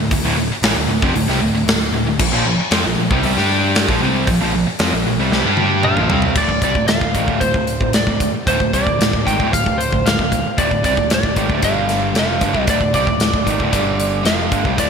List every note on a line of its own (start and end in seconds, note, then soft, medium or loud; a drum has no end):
0.00 0.10 D2 medium
0.00 0.10 A2 medium
0.11 0.23 D1 medium
0.11 0.22 D2 medium
0.11 0.23 A2 medium
0.11 kick loud
0.11 open hi-hat medium
0.23 0.36 D1 medium
0.23 0.36 D2 medium
0.23 0.36 A2 loud
0.37 0.49 D1 medium
0.37 0.50 D2 medium
0.37 0.50 A2 medium
0.50 muted distorted electric guitar stroke medium
0.50 muted picked electric bass stroke soft
0.50 muted overdriven electric guitar stroke medium
0.62 0.74 A1 medium
0.62 0.76 A2 medium
0.62 0.76 E3 medium
0.62 snare loud
0.62 open hi-hat medium
0.75 0.87 D1 medium
0.75 0.89 D2 medium
0.75 0.90 A2 medium
0.89 1.01 D1 medium
0.89 1.03 D2 medium
0.89 1.03 A2 medium
1.02 1.13 F1 medium
1.02 1.15 F2 medium
1.02 1.15 C3 loud
1.02 kick loud
1.14 1.26 D1 medium
1.14 1.28 D2 medium
1.14 1.29 A2 medium
1.14 open hi-hat medium
1.27 1.39 C2 loud
1.27 1.41 C3 loud
1.27 1.41 G3 medium
1.27 snare soft
1.40 1.52 D1 medium
1.40 1.54 D2 medium
1.40 1.54 A2 medium
1.52 1.65 D1 medium
1.52 1.64 D2 medium
1.52 1.65 A2 medium
1.66 1.90 D1 medium
1.66 1.87 D2 medium
1.66 1.87 A2 medium
1.66 snare loud
1.66 open hi-hat medium
1.92 2.04 D1 medium
1.92 2.04 D2 medium
1.92 2.04 A2 medium
2.05 2.18 D1 medium
2.05 2.19 D2 medium
2.05 2.19 A2 medium
2.19 2.31 A#1 medium
2.19 2.31 A#2 medium
2.19 2.32 F3 medium
2.19 kick loud
2.19 crash loud
2.31 2.44 A#1 medium
2.31 2.44 A#2 medium
2.31 2.45 F3 loud
2.44 2.56 A#1 medium
2.44 2.56 A#2 medium
2.44 2.58 F3 medium
2.57 muted picked electric bass stroke soft
2.57 muted overdriven electric guitar stroke medium
2.57 muted distorted electric guitar stroke medium
2.71 2.83 F2 medium
2.71 2.83 F3 medium
2.71 2.84 C4 loud
2.71 snare loud
2.71 open hi-hat medium
2.84 2.96 A#1 medium
2.84 2.97 A#2 medium
2.84 2.96 F3 medium
2.97 3.09 A#1 medium
2.97 3.10 A#2 medium
2.97 3.10 F3 medium
3.11 3.22 C2 loud
3.11 3.23 C3 medium
3.11 3.23 G3 loud
3.11 kick loud
3.23 3.35 C2 loud
3.23 3.36 C3 medium
3.23 3.34 G3 loud
3.23 open hi-hat medium
3.36 3.85 G2 medium
3.36 3.87 G3 medium
3.36 3.88 D4 medium
3.36 3.88 G4 loud
3.36 snare soft
3.75 snare loud
3.75 open hi-hat medium
3.88 4.00 A#1 medium
3.88 4.01 A#2 medium
3.88 4.02 F3 loud
3.88 kick loud
4.03 4.26 C2 medium
4.03 4.27 C3 medium
4.03 4.28 G3 loud
4.03 4.28 C4 loud
4.27 4.39 A#1 medium
4.27 4.40 A#2 medium
4.27 4.41 F3 medium
4.27 kick medium
4.27 open hi-hat medium
4.41 4.53 A#1 loud
4.41 4.53 A#2 medium
4.41 4.54 F3 loud
4.54 4.66 A#1 medium
4.54 4.67 A#2 medium
4.54 4.68 F3 medium
4.66 muted distorted electric guitar stroke medium
4.66 muted picked electric bass stroke soft
4.66 muted overdriven electric guitar stroke medium
4.79 4.91 F2 medium
4.79 4.92 F3 medium
4.79 4.93 C4 medium
4.79 snare loud
4.79 open hi-hat medium
4.91 5.04 A#1 medium
4.91 5.05 A#2 medium
4.91 5.05 F3 medium
5.05 5.17 A#1 medium
5.05 5.19 A#2 medium
5.05 5.19 F3 medium
5.17 5.30 C2 medium
5.17 5.32 C3 medium
5.17 5.32 G3 loud
5.31 5.44 C2 medium
5.31 5.45 C3 medium
5.31 5.45 G3 loud
5.31 snare medium
5.44 5.93 G2 medium
5.44 5.97 G3 medium
5.44 5.98 D4 loud
5.44 5.98 G4 loud
5.57 high tom medium
5.83 6.37 F5 medium
5.83 mid tom medium
5.95 6.08 A#1 medium
5.95 6.09 A#2 medium
5.95 6.10 F3 loud
5.95 mid tom medium
6.08 6.34 C2 loud
6.08 6.36 C3 medium
6.08 6.36 G3 medium
6.08 6.36 C4 medium
6.08 floor tom loud
6.22 floor tom medium
6.35 6.47 D1 medium
6.35 6.48 D2 medium
6.35 6.49 A2 medium
6.35 6.62 D5 medium
6.35 kick loud
6.35 crash medium
6.48 6.61 D1 medium
6.48 6.63 D2 medium
6.48 6.63 A2 medium
6.48 kick medium
6.61 6.74 C2 medium
6.61 6.76 C3 medium
6.61 6.76 G3 medium
6.61 6.87 D5 medium
6.61 kick medium
6.61 closed hi-hat medium
6.75 6.86 D1 medium
6.75 6.87 D2 medium
6.75 6.87 A2 medium
6.75 kick medium
6.87 7.00 D1 medium
6.87 7.01 D2 medium
6.87 7.01 A2 medium
6.87 7.43 F5 loud
6.87 snare loud
6.87 closed hi-hat medium
7.01 7.14 D1 medium
7.01 7.14 D2 medium
7.01 7.15 A2 medium
7.01 kick medium
7.15 7.27 G#1 medium
7.15 7.27 G#2 medium
7.15 7.28 D#3 medium
7.15 kick medium
7.15 closed hi-hat medium
7.27 7.40 D1 medium
7.27 7.40 D2 medium
7.27 7.41 A2 medium
7.27 kick medium
7.40 7.53 D1 medium
7.40 7.54 D2 medium
7.40 7.55 A2 medium
7.40 7.95 C5 medium
7.40 kick medium
7.40 closed hi-hat medium
7.54 7.79 D1 medium
7.54 7.76 D2 medium
7.54 7.76 A2 medium
7.54 kick medium
7.67 closed hi-hat medium
7.81 7.92 D1 medium
7.81 7.94 D2 medium
7.81 7.94 A2 medium
7.81 kick medium
7.92 8.05 D1 medium
7.92 8.06 D2 medium
7.92 8.06 A2 medium
7.92 8.31 D5 medium
7.92 snare loud
7.92 closed hi-hat medium
8.07 8.19 D1 medium
8.07 8.20 D2 medium
8.07 8.20 A2 medium
8.07 kick medium
8.20 8.32 D1 medium
8.20 8.35 D2 medium
8.20 8.35 A2 medium
8.20 kick medium
8.20 closed hi-hat medium
8.32 muted picked electric bass stroke soft
8.32 muted distorted electric guitar stroke medium
8.32 muted overdriven electric guitar stroke medium
8.47 8.59 D1 medium
8.47 8.59 D2 medium
8.47 8.59 A2 medium
8.47 8.72 C5 medium
8.47 kick medium
8.47 closed hi-hat medium
8.60 8.72 D1 medium
8.60 8.73 D2 medium
8.60 8.73 A2 medium
8.60 kick medium
8.73 8.85 C2 medium
8.73 8.86 C3 medium
8.73 8.86 G3 loud
8.73 9.28 D5 medium
8.73 kick medium
8.73 closed hi-hat medium
8.86 8.98 D1 medium
8.86 8.97 D2 medium
8.86 8.98 A2 medium
8.86 kick medium
8.98 9.11 D1 medium
8.98 9.11 D2 medium
8.98 9.10 A2 medium
8.98 snare loud
8.98 closed hi-hat medium
9.12 9.25 D1 medium
9.12 9.24 D2 medium
9.12 9.25 A2 medium
9.12 kick medium
9.25 9.38 G#1 medium
9.25 9.37 G#2 medium
9.25 9.38 D#3 medium
9.25 9.53 G5 medium
9.25 kick medium
9.25 closed hi-hat medium
9.39 9.51 D1 medium
9.39 9.51 D2 medium
9.39 9.52 A2 medium
9.39 kick medium
9.52 9.65 D1 medium
9.52 9.65 D2 medium
9.52 9.65 A2 medium
9.52 9.80 F5 medium
9.52 kick medium
9.52 closed hi-hat medium
9.66 9.90 D1 medium
9.66 9.86 D2 medium
9.66 9.87 A2 medium
9.66 kick medium
9.78 10.05 C5 medium
9.78 closed hi-hat medium
9.91 10.04 D1 medium
9.91 10.04 D2 medium
9.91 10.05 A2 medium
9.91 kick medium
10.04 10.17 D1 medium
10.04 10.18 D2 medium
10.04 10.18 A2 medium
10.04 10.59 F5 medium
10.04 snare loud
10.04 closed hi-hat medium
10.19 10.30 D1 medium
10.19 10.31 D2 medium
10.19 10.31 A2 medium
10.19 kick medium
10.31 10.43 D1 medium
10.31 10.43 D2 medium
10.31 10.45 A2 medium
10.31 kick medium
10.31 closed hi-hat medium
10.45 muted overdriven electric guitar stroke medium
10.45 muted picked electric bass stroke soft
10.45 muted distorted electric guitar stroke medium
10.57 10.70 D1 medium
10.57 10.69 D2 medium
10.57 10.69 A2 loud
10.57 10.82 D5 medium
10.57 kick loud
10.57 closed hi-hat medium
10.70 10.83 D1 medium
10.70 10.83 D2 medium
10.70 10.84 A2 medium
10.70 kick medium
10.83 10.96 C2 medium
10.83 10.96 C3 medium
10.83 10.96 G3 medium
10.83 11.11 D5 medium
10.83 kick medium
10.83 closed hi-hat medium
10.97 11.09 D1 medium
10.97 11.10 D2 medium
10.97 11.10 A2 medium
10.97 kick medium
11.10 11.23 D1 medium
11.10 11.22 D2 medium
11.10 11.22 A2 medium
11.10 11.64 D5 medium
11.10 snare loud
11.10 closed hi-hat medium
11.23 11.35 D1 medium
11.23 11.36 D2 medium
11.23 11.36 A2 medium
11.23 kick medium
11.36 11.48 G#1 medium
11.36 11.48 G#2 medium
11.36 11.48 D#3 loud
11.36 kick medium
11.36 closed hi-hat medium
11.48 11.62 D1 medium
11.48 11.61 D2 medium
11.48 11.61 A2 medium
11.48 kick medium
11.62 12.12 G1 medium
11.62 12.14 G2 medium
11.62 12.14 D3 medium
11.62 12.14 G3 loud
11.62 12.18 F5 medium
11.62 kick medium
11.62 closed hi-hat medium
11.89 snare soft
11.89 closed hi-hat medium
12.14 12.39 F1 medium
12.14 12.39 F2 medium
12.14 12.40 C3 medium
12.14 12.41 F3 loud
12.14 snare loud
12.14 closed hi-hat medium
12.19 12.69 F5 medium
12.39 12.53 G1 medium
12.39 12.52 G2 medium
12.39 12.53 D3 medium
12.39 kick loud
12.39 closed hi-hat medium
12.53 12.66 C2 medium
12.53 12.66 C3 medium
12.53 12.66 G3 medium
12.53 kick medium
12.66 12.80 D1 medium
12.66 12.79 D2 medium
12.66 12.80 A2 loud
12.66 12.93 D5 medium
12.66 kick medium
12.66 closed hi-hat medium
12.80 12.93 D1 medium
12.80 12.92 D2 medium
12.80 12.94 A2 medium
12.80 kick medium
12.93 13.06 C2 medium
12.93 13.06 C3 medium
12.93 13.06 G3 medium
12.93 14.26 D5 medium
12.93 kick medium
12.93 closed hi-hat medium
13.07 13.18 D1 medium
13.07 13.20 D2 medium
13.07 13.21 A2 medium
13.07 kick medium
13.19 13.32 D1 medium
13.19 13.33 D2 medium
13.19 13.32 A2 medium
13.19 snare loud
13.19 closed hi-hat medium
13.33 13.46 D1 medium
13.33 13.45 D2 medium
13.33 13.45 A2 medium
13.33 kick medium
13.45 13.59 G#1 medium
13.45 13.58 G#2 medium
13.45 13.58 D#3 loud
13.45 kick medium
13.45 closed hi-hat medium
13.49 13.60 D#3 loud
13.58 13.72 D1 medium
13.58 13.70 D2 medium
13.58 13.70 A2 loud
13.58 kick medium
13.71 14.22 G1 medium
13.71 14.23 G2 medium
13.71 14.23 D3 medium
13.71 14.24 G3 medium
13.71 kick medium
13.71 closed hi-hat medium
13.75 14.26 D3 medium
14.00 closed hi-hat medium
14.23 14.49 F1 medium
14.23 14.50 F2 medium
14.23 14.50 C3 loud
14.23 14.51 F3 loud
14.23 14.75 F5 medium
14.23 snare loud
14.23 closed hi-hat medium
14.50 14.64 G1 medium
14.50 14.63 G2 medium
14.50 14.64 D3 medium
14.50 kick loud
14.50 closed hi-hat medium
14.64 14.77 C2 medium
14.64 14.76 C3 medium
14.64 14.76 G3 medium
14.64 kick medium
14.76 14.90 D1 medium
14.76 14.89 D2 medium
14.76 14.89 A2 loud
14.76 14.90 D5 medium
14.76 kick medium
14.76 closed hi-hat medium